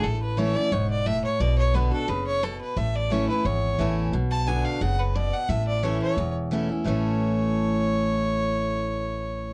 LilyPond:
<<
  \new Staff \with { instrumentName = "Fiddle" } { \time 4/4 \key a \major \tempo 4 = 176 a'8 b'8 cis''8 d''8 cis''8 d''8 e''8 cis''8 | d''8 cis''8 b'8 a'8 b'8 cis''8 a'8 b'8 | e''8 d''8 cis''8 b'8 cis''4.~ cis''16 r16 | r8 a''8 gis''8 f''8 fis''8 b'8 d''8 fis''8 |
e''8 d''8 cis''8 cis''4 r4. | cis''1~ | cis''1 | }
  \new Staff \with { instrumentName = "Steel-string acoustic guitar" } { \time 4/4 \key a \major << { r4 <e a cis' e'>8 <cis' e'>8 r2 | r4 <d b d' fis'>8 <d' fis'>8 r2 | r4 <e a cis' e'>8 <cis' e'>8 r4 <e a cis' e'>4 | r4 <d b d' fis'>4 r2 |
r4 <e a cis' e'>4 r4 <e a cis' e'>8 <cis' e'>8 | <a, e a cis' e'>1~ | <a, e a cis' e'>1 | } \\ { a,2 gis,4 a,4 | b,2 cis4 b,4 | a,2 e,2 | b,2 cis4 b,4 |
a,2 e,2 | r1 | r1 | } >> }
  \new Staff \with { instrumentName = "Upright bass" } { \clef bass \time 4/4 \key a \major a,,2 e,,2 | b,,2 fis,,2 | a,,2 gis,,4 a,,4 | b,,2 fis,,2 |
a,,2 e,,2 | a,,1~ | a,,1 | }
>>